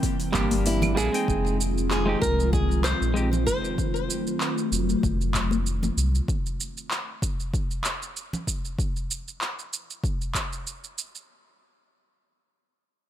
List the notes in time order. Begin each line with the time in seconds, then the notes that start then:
Already playing: E3 A#3 C4 E5 G5
0.03 kick, open hi-hat, shaker
0.20 open hi-hat, shaker
0.32 G1 G3 A#3 D4 G4, kick, clap, shaker
0.51 open hi-hat, high conga, shaker
0.66 E4, open hi-hat, shaker
0.82 open hi-hat, high conga, low conga, claves, shaker
0.95 A#1 G3 A#3 D4 E4 G#4, shaker
1.12 G#3 C4 D#4 G5, open hi-hat, shaker
1.28 F1 D#3 F3 G#3 C4 F4, kick, shaker
1.47 shaker
1.61 shaker
1.78 shaker
1.91 G#4, clap, shaker
2.06 G#3 C4 D#4 G4
2.22 C2 A#4, kick, shaker
2.40 shaker
2.53 G#4, kick, shaker
2.71 shaker
2.84 C5, clap, shaker
3.01 A#1, shaker
3.14 G#3 C4 D#4 G4, shaker
3.33 low conga, shaker
3.47 F1 C5, kick, shaker
3.65 shaker
3.78 F#3 A3, kick, shaker
3.96 shaker
4.10 shaker
4.27 shaker
4.41 clap, shaker
4.58 shaker
4.72 F1, shaker
4.90 shaker
5.03 F1, kick, shaker
5.21 shaker
5.34 kick, clap, shaker
5.51 high conga, shaker
5.67 shaker
5.83 high conga, low conga, shaker
5.97 C2, shaker
6.15 shaker
6.28 kick, shaker
6.46 shaker
6.60 shaker
6.77 shaker
6.91 clap, shaker
7.22 kick, shaker
7.40 shaker
7.54 kick, shaker
7.71 shaker
7.84 clap, shaker
8.02 shaker
8.17 shaker
8.33 low conga, shaker
8.47 kick, shaker
8.65 shaker
8.79 kick, shaker
8.96 shaker
9.11 shaker
9.28 shaker
9.41 clap, shaker
9.59 shaker
9.73 shaker
9.90 shaker
10.04 kick, shaker
10.21 shaker
10.35 kick, clap, shaker
10.53 shaker
10.67 shaker
10.84 shaker
10.98 shaker
11.15 shaker